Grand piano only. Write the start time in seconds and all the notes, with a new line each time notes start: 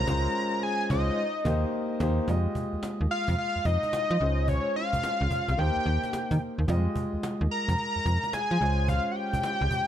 Already playing: G#3 C#4 F4 C5
0.07 G#3 C#4 F4 C5
0.89 G#3 C#4 F4 C5
1.44 A#3 D#4 G4 C5
2.00 A#3 D#4 G4 C5
2.27 G#3 F4 G4 D#5
4.20 G#3 C#4 F4 C5
5.57 A#3 D#4 G4 C5
6.67 G3 F4 G4 D#5
6.74 G#3
8.60 G#3 C#4 F4 C5